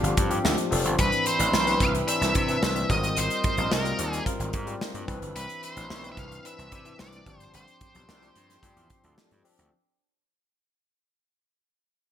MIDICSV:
0, 0, Header, 1, 6, 480
1, 0, Start_track
1, 0, Key_signature, 0, "major"
1, 0, Tempo, 545603
1, 871, Time_signature, 4, 2, 24, 8
1, 10660, End_track
2, 0, Start_track
2, 0, Title_t, "Horn section"
2, 0, Program_c, 0, 61
2, 0, Note_on_c, 0, 72, 85
2, 0, Note_on_c, 0, 74, 76
2, 0, Note_on_c, 0, 77, 89
2, 597, Note_off_c, 0, 77, 0
2, 598, Note_off_c, 0, 72, 0
2, 598, Note_off_c, 0, 74, 0
2, 873, Note_on_c, 0, 67, 84
2, 873, Note_on_c, 0, 76, 88
2, 876, Note_on_c, 0, 83, 91
2, 2283, Note_off_c, 0, 67, 0
2, 2283, Note_off_c, 0, 76, 0
2, 2285, Note_off_c, 0, 83, 0
2, 2552, Note_on_c, 0, 70, 81
2, 2552, Note_on_c, 0, 75, 88
2, 2553, Note_on_c, 0, 72, 80
2, 4198, Note_off_c, 0, 70, 0
2, 4198, Note_off_c, 0, 72, 0
2, 4198, Note_off_c, 0, 75, 0
2, 4468, Note_on_c, 0, 76, 83
2, 4470, Note_on_c, 0, 67, 79
2, 4471, Note_on_c, 0, 83, 79
2, 6116, Note_off_c, 0, 67, 0
2, 6116, Note_off_c, 0, 76, 0
2, 6117, Note_off_c, 0, 83, 0
2, 6394, Note_on_c, 0, 74, 77
2, 6395, Note_on_c, 0, 72, 75
2, 6395, Note_on_c, 0, 79, 89
2, 8277, Note_off_c, 0, 72, 0
2, 8277, Note_off_c, 0, 74, 0
2, 8277, Note_off_c, 0, 79, 0
2, 10660, End_track
3, 0, Start_track
3, 0, Title_t, "Lead electric guitar"
3, 0, Program_c, 1, 29
3, 882, Note_on_c, 1, 71, 85
3, 1114, Note_off_c, 1, 71, 0
3, 1117, Note_on_c, 1, 72, 94
3, 1603, Note_on_c, 1, 77, 97
3, 1608, Note_off_c, 1, 72, 0
3, 1666, Note_off_c, 1, 77, 0
3, 1835, Note_on_c, 1, 76, 100
3, 2552, Note_off_c, 1, 76, 0
3, 2556, Note_on_c, 1, 75, 82
3, 2796, Note_on_c, 1, 72, 90
3, 2800, Note_off_c, 1, 75, 0
3, 3275, Note_off_c, 1, 72, 0
3, 3279, Note_on_c, 1, 70, 78
3, 3721, Note_off_c, 1, 70, 0
3, 4716, Note_on_c, 1, 71, 78
3, 4937, Note_off_c, 1, 71, 0
3, 4963, Note_on_c, 1, 72, 93
3, 5348, Note_off_c, 1, 72, 0
3, 5383, Note_on_c, 1, 76, 72
3, 5437, Note_off_c, 1, 76, 0
3, 5447, Note_on_c, 1, 77, 92
3, 5662, Note_off_c, 1, 77, 0
3, 5687, Note_on_c, 1, 76, 104
3, 6155, Note_off_c, 1, 76, 0
3, 6158, Note_on_c, 1, 74, 87
3, 6601, Note_off_c, 1, 74, 0
3, 6642, Note_on_c, 1, 72, 81
3, 8041, Note_off_c, 1, 72, 0
3, 10660, End_track
4, 0, Start_track
4, 0, Title_t, "Tine electric piano"
4, 0, Program_c, 2, 4
4, 0, Control_c, 2, 64, 127
4, 0, Note_on_c, 2, 53, 74
4, 0, Note_on_c, 2, 60, 63
4, 0, Note_on_c, 2, 62, 64
4, 0, Note_on_c, 2, 67, 70
4, 0, Note_on_c, 2, 69, 65
4, 154, Note_off_c, 2, 53, 0
4, 156, Note_off_c, 2, 60, 0
4, 157, Note_off_c, 2, 62, 0
4, 159, Note_off_c, 2, 67, 0
4, 263, Note_on_c, 2, 53, 77
4, 267, Note_on_c, 2, 60, 67
4, 272, Note_on_c, 2, 62, 60
4, 273, Note_on_c, 2, 67, 82
4, 514, Note_off_c, 2, 53, 0
4, 516, Note_off_c, 2, 60, 0
4, 518, Note_off_c, 2, 62, 0
4, 519, Note_off_c, 2, 67, 0
4, 621, Note_on_c, 2, 53, 80
4, 626, Note_on_c, 2, 60, 78
4, 628, Note_on_c, 2, 62, 78
4, 634, Note_off_c, 2, 69, 0
4, 634, Note_on_c, 2, 69, 85
4, 791, Note_off_c, 2, 53, 0
4, 793, Note_off_c, 2, 60, 0
4, 794, Note_off_c, 2, 62, 0
4, 797, Note_off_c, 2, 69, 0
4, 863, Note_on_c, 2, 52, 72
4, 866, Note_on_c, 2, 60, 59
4, 870, Note_on_c, 2, 62, 57
4, 874, Note_on_c, 2, 71, 75
4, 880, Control_c, 2, 64, 0
4, 1051, Control_c, 2, 64, 127
4, 1114, Note_off_c, 2, 52, 0
4, 1115, Note_off_c, 2, 60, 0
4, 1117, Note_off_c, 2, 62, 0
4, 1119, Note_off_c, 2, 71, 0
4, 1221, Note_on_c, 2, 52, 65
4, 1226, Note_on_c, 2, 60, 59
4, 1229, Note_on_c, 2, 62, 54
4, 1233, Note_on_c, 2, 71, 68
4, 1390, Note_off_c, 2, 52, 0
4, 1393, Note_off_c, 2, 60, 0
4, 1394, Note_off_c, 2, 62, 0
4, 1396, Note_off_c, 2, 71, 0
4, 1459, Note_on_c, 2, 52, 69
4, 1465, Note_on_c, 2, 60, 59
4, 1469, Note_on_c, 2, 62, 53
4, 1472, Note_on_c, 2, 71, 72
4, 1712, Note_off_c, 2, 52, 0
4, 1715, Note_off_c, 2, 60, 0
4, 1717, Note_off_c, 2, 62, 0
4, 1718, Note_off_c, 2, 71, 0
4, 1822, Note_on_c, 2, 52, 69
4, 1825, Note_on_c, 2, 60, 63
4, 1828, Note_on_c, 2, 62, 68
4, 1832, Note_on_c, 2, 72, 75
4, 2073, Note_off_c, 2, 52, 0
4, 2075, Note_off_c, 2, 60, 0
4, 2076, Note_off_c, 2, 62, 0
4, 2078, Note_off_c, 2, 72, 0
4, 2187, Note_on_c, 2, 52, 71
4, 2190, Note_on_c, 2, 60, 55
4, 2193, Note_on_c, 2, 62, 63
4, 2197, Note_on_c, 2, 71, 66
4, 2436, Note_off_c, 2, 52, 0
4, 2437, Note_off_c, 2, 60, 0
4, 2439, Note_off_c, 2, 62, 0
4, 2441, Note_off_c, 2, 71, 0
4, 2546, Note_on_c, 2, 55, 73
4, 2547, Note_on_c, 2, 60, 68
4, 2553, Note_on_c, 2, 65, 63
4, 2555, Note_on_c, 2, 70, 81
4, 2562, Control_c, 2, 64, 0
4, 2699, Control_c, 2, 64, 127
4, 3029, Note_off_c, 2, 55, 0
4, 3029, Note_off_c, 2, 60, 0
4, 3032, Note_off_c, 2, 65, 0
4, 3033, Note_off_c, 2, 70, 0
4, 3142, Note_on_c, 2, 55, 54
4, 3148, Note_on_c, 2, 60, 50
4, 3150, Note_on_c, 2, 65, 59
4, 3154, Note_on_c, 2, 70, 71
4, 3311, Note_off_c, 2, 55, 0
4, 3314, Note_off_c, 2, 60, 0
4, 3315, Note_off_c, 2, 65, 0
4, 3317, Note_off_c, 2, 70, 0
4, 3379, Note_on_c, 2, 55, 66
4, 3383, Note_on_c, 2, 60, 60
4, 3386, Note_on_c, 2, 65, 64
4, 3388, Note_on_c, 2, 70, 75
4, 3632, Note_off_c, 2, 55, 0
4, 3633, Note_off_c, 2, 60, 0
4, 3635, Note_off_c, 2, 65, 0
4, 3636, Note_off_c, 2, 70, 0
4, 3740, Note_on_c, 2, 55, 64
4, 3743, Note_on_c, 2, 60, 62
4, 3747, Note_on_c, 2, 65, 68
4, 3751, Note_on_c, 2, 70, 86
4, 3992, Note_off_c, 2, 55, 0
4, 3993, Note_off_c, 2, 60, 0
4, 3996, Note_off_c, 2, 65, 0
4, 3998, Note_off_c, 2, 70, 0
4, 4104, Note_on_c, 2, 55, 79
4, 4108, Note_on_c, 2, 60, 62
4, 4111, Note_on_c, 2, 65, 67
4, 4116, Note_on_c, 2, 67, 85
4, 4354, Note_off_c, 2, 55, 0
4, 4356, Note_off_c, 2, 60, 0
4, 4358, Note_off_c, 2, 65, 0
4, 4360, Note_off_c, 2, 67, 0
4, 4461, Note_on_c, 2, 52, 89
4, 4465, Note_on_c, 2, 60, 78
4, 4470, Note_on_c, 2, 62, 83
4, 4473, Note_on_c, 2, 71, 100
4, 4481, Control_c, 2, 64, 0
4, 4634, Control_c, 2, 64, 127
4, 4946, Note_off_c, 2, 52, 0
4, 4948, Note_off_c, 2, 60, 0
4, 4950, Note_off_c, 2, 62, 0
4, 4952, Note_off_c, 2, 71, 0
4, 5067, Note_on_c, 2, 52, 62
4, 5069, Note_on_c, 2, 60, 63
4, 5074, Note_on_c, 2, 62, 59
4, 5075, Note_on_c, 2, 71, 69
4, 5233, Note_off_c, 2, 52, 0
4, 5234, Note_off_c, 2, 60, 0
4, 5237, Note_off_c, 2, 62, 0
4, 5237, Note_off_c, 2, 71, 0
4, 5305, Note_on_c, 2, 52, 64
4, 5309, Note_on_c, 2, 60, 57
4, 5312, Note_on_c, 2, 62, 60
4, 5315, Note_on_c, 2, 71, 67
4, 5554, Note_off_c, 2, 52, 0
4, 5557, Note_off_c, 2, 60, 0
4, 5558, Note_off_c, 2, 62, 0
4, 5559, Note_off_c, 2, 71, 0
4, 5668, Note_on_c, 2, 52, 65
4, 5672, Note_on_c, 2, 60, 66
4, 5673, Note_on_c, 2, 62, 70
4, 5679, Note_on_c, 2, 71, 75
4, 5916, Note_off_c, 2, 52, 0
4, 5918, Note_off_c, 2, 60, 0
4, 5919, Note_off_c, 2, 62, 0
4, 5922, Note_off_c, 2, 71, 0
4, 6023, Note_on_c, 2, 52, 60
4, 6030, Note_on_c, 2, 60, 62
4, 6033, Note_on_c, 2, 62, 56
4, 6037, Note_on_c, 2, 64, 72
4, 6273, Note_off_c, 2, 52, 0
4, 6277, Note_off_c, 2, 60, 0
4, 6278, Note_off_c, 2, 62, 0
4, 6281, Note_off_c, 2, 64, 0
4, 6383, Note_on_c, 2, 53, 71
4, 6387, Note_on_c, 2, 60, 68
4, 6392, Note_on_c, 2, 62, 73
4, 6395, Note_on_c, 2, 67, 77
4, 6400, Control_c, 2, 64, 0
4, 6574, Control_c, 2, 64, 127
4, 6867, Note_off_c, 2, 53, 0
4, 6868, Note_off_c, 2, 60, 0
4, 6871, Note_off_c, 2, 62, 0
4, 6873, Note_off_c, 2, 67, 0
4, 6989, Note_on_c, 2, 53, 61
4, 6993, Note_on_c, 2, 60, 56
4, 6996, Note_on_c, 2, 62, 58
4, 7000, Note_on_c, 2, 67, 73
4, 7154, Note_off_c, 2, 53, 0
4, 7156, Note_off_c, 2, 60, 0
4, 7157, Note_off_c, 2, 62, 0
4, 7160, Note_off_c, 2, 67, 0
4, 7228, Note_on_c, 2, 53, 70
4, 7231, Note_on_c, 2, 60, 70
4, 7235, Note_on_c, 2, 62, 61
4, 7239, Note_on_c, 2, 67, 80
4, 7476, Note_off_c, 2, 53, 0
4, 7478, Note_off_c, 2, 60, 0
4, 7479, Note_off_c, 2, 62, 0
4, 7481, Note_off_c, 2, 67, 0
4, 7584, Note_on_c, 2, 53, 77
4, 7587, Note_on_c, 2, 60, 81
4, 7594, Note_on_c, 2, 62, 75
4, 7595, Note_on_c, 2, 67, 100
4, 7834, Note_off_c, 2, 53, 0
4, 7836, Note_off_c, 2, 60, 0
4, 7839, Note_off_c, 2, 62, 0
4, 7839, Note_off_c, 2, 67, 0
4, 7951, Note_on_c, 2, 53, 81
4, 7952, Note_on_c, 2, 60, 61
4, 7956, Note_on_c, 2, 62, 70
4, 7960, Note_on_c, 2, 69, 82
4, 8197, Note_off_c, 2, 53, 0
4, 8198, Note_off_c, 2, 60, 0
4, 8200, Note_off_c, 2, 62, 0
4, 8202, Note_off_c, 2, 69, 0
4, 8305, Note_on_c, 2, 53, 80
4, 8310, Note_on_c, 2, 60, 83
4, 8312, Note_on_c, 2, 62, 77
4, 8315, Note_on_c, 2, 67, 80
4, 8472, Note_off_c, 2, 53, 0
4, 8474, Note_off_c, 2, 60, 0
4, 8476, Note_off_c, 2, 62, 0
4, 8477, Note_off_c, 2, 67, 0
4, 8560, Control_c, 2, 64, 0
4, 10660, End_track
5, 0, Start_track
5, 0, Title_t, "Slap bass"
5, 0, Program_c, 3, 36
5, 28, Note_on_c, 3, 31, 86
5, 119, Note_off_c, 3, 31, 0
5, 153, Note_on_c, 3, 43, 92
5, 331, Note_off_c, 3, 43, 0
5, 392, Note_on_c, 3, 38, 86
5, 481, Note_off_c, 3, 38, 0
5, 631, Note_on_c, 3, 29, 75
5, 747, Note_off_c, 3, 29, 0
5, 747, Note_on_c, 3, 31, 87
5, 838, Note_off_c, 3, 31, 0
5, 870, Note_on_c, 3, 36, 94
5, 960, Note_off_c, 3, 36, 0
5, 1226, Note_on_c, 3, 33, 74
5, 1318, Note_off_c, 3, 33, 0
5, 1347, Note_on_c, 3, 35, 87
5, 1528, Note_off_c, 3, 35, 0
5, 1588, Note_on_c, 3, 36, 74
5, 1768, Note_off_c, 3, 36, 0
5, 1947, Note_on_c, 3, 36, 98
5, 2038, Note_off_c, 3, 36, 0
5, 2071, Note_on_c, 3, 48, 95
5, 2250, Note_off_c, 3, 48, 0
5, 2310, Note_on_c, 3, 36, 78
5, 2490, Note_off_c, 3, 36, 0
5, 2550, Note_on_c, 3, 32, 89
5, 2730, Note_off_c, 3, 32, 0
5, 2788, Note_on_c, 3, 32, 73
5, 2879, Note_off_c, 3, 32, 0
5, 3147, Note_on_c, 3, 34, 74
5, 3238, Note_off_c, 3, 34, 0
5, 3268, Note_on_c, 3, 36, 83
5, 3449, Note_off_c, 3, 36, 0
5, 3508, Note_on_c, 3, 39, 72
5, 3688, Note_off_c, 3, 39, 0
5, 3866, Note_on_c, 3, 32, 82
5, 3958, Note_off_c, 3, 32, 0
5, 3991, Note_on_c, 3, 44, 91
5, 4170, Note_off_c, 3, 44, 0
5, 4348, Note_on_c, 3, 43, 71
5, 4439, Note_off_c, 3, 43, 0
5, 4472, Note_on_c, 3, 36, 95
5, 4561, Note_off_c, 3, 36, 0
5, 4588, Note_on_c, 3, 31, 84
5, 4679, Note_off_c, 3, 31, 0
5, 4709, Note_on_c, 3, 36, 83
5, 4799, Note_off_c, 3, 36, 0
5, 5073, Note_on_c, 3, 33, 82
5, 5162, Note_off_c, 3, 33, 0
5, 5190, Note_on_c, 3, 35, 81
5, 5369, Note_off_c, 3, 35, 0
5, 5429, Note_on_c, 3, 36, 80
5, 5609, Note_off_c, 3, 36, 0
5, 5793, Note_on_c, 3, 36, 70
5, 5881, Note_off_c, 3, 36, 0
5, 5913, Note_on_c, 3, 48, 107
5, 6091, Note_off_c, 3, 48, 0
5, 6156, Note_on_c, 3, 36, 87
5, 6333, Note_off_c, 3, 36, 0
5, 6389, Note_on_c, 3, 31, 83
5, 6569, Note_off_c, 3, 31, 0
5, 6634, Note_on_c, 3, 31, 87
5, 6722, Note_off_c, 3, 31, 0
5, 6995, Note_on_c, 3, 35, 82
5, 7083, Note_off_c, 3, 35, 0
5, 7115, Note_on_c, 3, 36, 77
5, 7293, Note_off_c, 3, 36, 0
5, 7353, Note_on_c, 3, 43, 84
5, 7531, Note_off_c, 3, 43, 0
5, 7590, Note_on_c, 3, 43, 95
5, 7680, Note_off_c, 3, 43, 0
5, 7711, Note_on_c, 3, 40, 76
5, 7800, Note_off_c, 3, 40, 0
5, 7954, Note_on_c, 3, 38, 80
5, 8042, Note_off_c, 3, 38, 0
5, 8196, Note_on_c, 3, 43, 84
5, 8283, Note_off_c, 3, 43, 0
5, 8434, Note_on_c, 3, 38, 84
5, 8522, Note_off_c, 3, 38, 0
5, 10660, End_track
6, 0, Start_track
6, 0, Title_t, "Drums"
6, 36, Note_on_c, 9, 42, 49
6, 124, Note_off_c, 9, 42, 0
6, 152, Note_on_c, 9, 42, 67
6, 154, Note_on_c, 9, 36, 90
6, 240, Note_off_c, 9, 42, 0
6, 242, Note_off_c, 9, 36, 0
6, 270, Note_on_c, 9, 42, 42
6, 358, Note_off_c, 9, 42, 0
6, 394, Note_on_c, 9, 38, 89
6, 482, Note_off_c, 9, 38, 0
6, 509, Note_on_c, 9, 42, 53
6, 597, Note_off_c, 9, 42, 0
6, 633, Note_on_c, 9, 46, 65
6, 721, Note_off_c, 9, 46, 0
6, 753, Note_on_c, 9, 42, 53
6, 841, Note_off_c, 9, 42, 0
6, 867, Note_on_c, 9, 42, 96
6, 870, Note_on_c, 9, 36, 97
6, 955, Note_off_c, 9, 42, 0
6, 958, Note_off_c, 9, 36, 0
6, 988, Note_on_c, 9, 42, 40
6, 1076, Note_off_c, 9, 42, 0
6, 1107, Note_on_c, 9, 42, 58
6, 1195, Note_off_c, 9, 42, 0
6, 1227, Note_on_c, 9, 42, 53
6, 1315, Note_off_c, 9, 42, 0
6, 1350, Note_on_c, 9, 38, 87
6, 1438, Note_off_c, 9, 38, 0
6, 1470, Note_on_c, 9, 42, 51
6, 1558, Note_off_c, 9, 42, 0
6, 1586, Note_on_c, 9, 42, 75
6, 1588, Note_on_c, 9, 36, 88
6, 1674, Note_off_c, 9, 42, 0
6, 1676, Note_off_c, 9, 36, 0
6, 1713, Note_on_c, 9, 42, 48
6, 1801, Note_off_c, 9, 42, 0
6, 1829, Note_on_c, 9, 42, 97
6, 1917, Note_off_c, 9, 42, 0
6, 1951, Note_on_c, 9, 42, 46
6, 1954, Note_on_c, 9, 38, 34
6, 2039, Note_off_c, 9, 42, 0
6, 2042, Note_off_c, 9, 38, 0
6, 2066, Note_on_c, 9, 42, 64
6, 2071, Note_on_c, 9, 36, 86
6, 2154, Note_off_c, 9, 42, 0
6, 2159, Note_off_c, 9, 36, 0
6, 2186, Note_on_c, 9, 42, 42
6, 2274, Note_off_c, 9, 42, 0
6, 2311, Note_on_c, 9, 38, 106
6, 2399, Note_off_c, 9, 38, 0
6, 2428, Note_on_c, 9, 42, 45
6, 2516, Note_off_c, 9, 42, 0
6, 2549, Note_on_c, 9, 36, 88
6, 2550, Note_on_c, 9, 42, 61
6, 2637, Note_off_c, 9, 36, 0
6, 2638, Note_off_c, 9, 42, 0
6, 2670, Note_on_c, 9, 42, 50
6, 2758, Note_off_c, 9, 42, 0
6, 2785, Note_on_c, 9, 42, 86
6, 2873, Note_off_c, 9, 42, 0
6, 2907, Note_on_c, 9, 42, 39
6, 2995, Note_off_c, 9, 42, 0
6, 3024, Note_on_c, 9, 42, 59
6, 3029, Note_on_c, 9, 36, 101
6, 3112, Note_off_c, 9, 42, 0
6, 3117, Note_off_c, 9, 36, 0
6, 3145, Note_on_c, 9, 42, 51
6, 3233, Note_off_c, 9, 42, 0
6, 3269, Note_on_c, 9, 38, 95
6, 3357, Note_off_c, 9, 38, 0
6, 3390, Note_on_c, 9, 42, 49
6, 3478, Note_off_c, 9, 42, 0
6, 3508, Note_on_c, 9, 42, 70
6, 3596, Note_off_c, 9, 42, 0
6, 3634, Note_on_c, 9, 42, 45
6, 3722, Note_off_c, 9, 42, 0
6, 3749, Note_on_c, 9, 36, 89
6, 3752, Note_on_c, 9, 42, 92
6, 3837, Note_off_c, 9, 36, 0
6, 3840, Note_off_c, 9, 42, 0
6, 3872, Note_on_c, 9, 42, 50
6, 3960, Note_off_c, 9, 42, 0
6, 3987, Note_on_c, 9, 42, 67
6, 3991, Note_on_c, 9, 36, 92
6, 4075, Note_off_c, 9, 42, 0
6, 4079, Note_off_c, 9, 36, 0
6, 4108, Note_on_c, 9, 42, 43
6, 4196, Note_off_c, 9, 42, 0
6, 4235, Note_on_c, 9, 38, 94
6, 4323, Note_off_c, 9, 38, 0
6, 4352, Note_on_c, 9, 42, 50
6, 4440, Note_off_c, 9, 42, 0
6, 4471, Note_on_c, 9, 36, 88
6, 4474, Note_on_c, 9, 42, 73
6, 4559, Note_off_c, 9, 36, 0
6, 4562, Note_off_c, 9, 42, 0
6, 4594, Note_on_c, 9, 42, 49
6, 4682, Note_off_c, 9, 42, 0
6, 4712, Note_on_c, 9, 42, 88
6, 4800, Note_off_c, 9, 42, 0
6, 4832, Note_on_c, 9, 42, 40
6, 4920, Note_off_c, 9, 42, 0
6, 4952, Note_on_c, 9, 42, 63
6, 5040, Note_off_c, 9, 42, 0
6, 5073, Note_on_c, 9, 42, 47
6, 5161, Note_off_c, 9, 42, 0
6, 5194, Note_on_c, 9, 38, 96
6, 5282, Note_off_c, 9, 38, 0
6, 5316, Note_on_c, 9, 42, 45
6, 5404, Note_off_c, 9, 42, 0
6, 5430, Note_on_c, 9, 36, 88
6, 5431, Note_on_c, 9, 42, 66
6, 5518, Note_off_c, 9, 36, 0
6, 5519, Note_off_c, 9, 42, 0
6, 5558, Note_on_c, 9, 42, 45
6, 5646, Note_off_c, 9, 42, 0
6, 5675, Note_on_c, 9, 42, 96
6, 5763, Note_off_c, 9, 42, 0
6, 5797, Note_on_c, 9, 42, 41
6, 5885, Note_off_c, 9, 42, 0
6, 5911, Note_on_c, 9, 42, 68
6, 5913, Note_on_c, 9, 36, 77
6, 5999, Note_off_c, 9, 42, 0
6, 6001, Note_off_c, 9, 36, 0
6, 6029, Note_on_c, 9, 42, 43
6, 6117, Note_off_c, 9, 42, 0
6, 6152, Note_on_c, 9, 38, 99
6, 6240, Note_off_c, 9, 38, 0
6, 6268, Note_on_c, 9, 42, 47
6, 6356, Note_off_c, 9, 42, 0
6, 6391, Note_on_c, 9, 36, 103
6, 6391, Note_on_c, 9, 42, 61
6, 6479, Note_off_c, 9, 36, 0
6, 6479, Note_off_c, 9, 42, 0
6, 6513, Note_on_c, 9, 42, 48
6, 6601, Note_off_c, 9, 42, 0
6, 6630, Note_on_c, 9, 42, 86
6, 6718, Note_off_c, 9, 42, 0
6, 6753, Note_on_c, 9, 42, 38
6, 6841, Note_off_c, 9, 42, 0
6, 6869, Note_on_c, 9, 42, 69
6, 6872, Note_on_c, 9, 36, 91
6, 6957, Note_off_c, 9, 42, 0
6, 6960, Note_off_c, 9, 36, 0
6, 6992, Note_on_c, 9, 42, 54
6, 7080, Note_off_c, 9, 42, 0
6, 7115, Note_on_c, 9, 38, 98
6, 7203, Note_off_c, 9, 38, 0
6, 7236, Note_on_c, 9, 42, 46
6, 7324, Note_off_c, 9, 42, 0
6, 7350, Note_on_c, 9, 42, 75
6, 7438, Note_off_c, 9, 42, 0
6, 7476, Note_on_c, 9, 38, 31
6, 7478, Note_on_c, 9, 42, 47
6, 7564, Note_off_c, 9, 38, 0
6, 7566, Note_off_c, 9, 42, 0
6, 7591, Note_on_c, 9, 36, 89
6, 7594, Note_on_c, 9, 42, 101
6, 7679, Note_off_c, 9, 36, 0
6, 7682, Note_off_c, 9, 42, 0
6, 7714, Note_on_c, 9, 42, 52
6, 7802, Note_off_c, 9, 42, 0
6, 7829, Note_on_c, 9, 42, 69
6, 7833, Note_on_c, 9, 36, 89
6, 7917, Note_off_c, 9, 42, 0
6, 7921, Note_off_c, 9, 36, 0
6, 7950, Note_on_c, 9, 42, 41
6, 8038, Note_off_c, 9, 42, 0
6, 8075, Note_on_c, 9, 38, 104
6, 8163, Note_off_c, 9, 38, 0
6, 8191, Note_on_c, 9, 42, 47
6, 8279, Note_off_c, 9, 42, 0
6, 8314, Note_on_c, 9, 46, 62
6, 8402, Note_off_c, 9, 46, 0
6, 8436, Note_on_c, 9, 42, 47
6, 8524, Note_off_c, 9, 42, 0
6, 10660, End_track
0, 0, End_of_file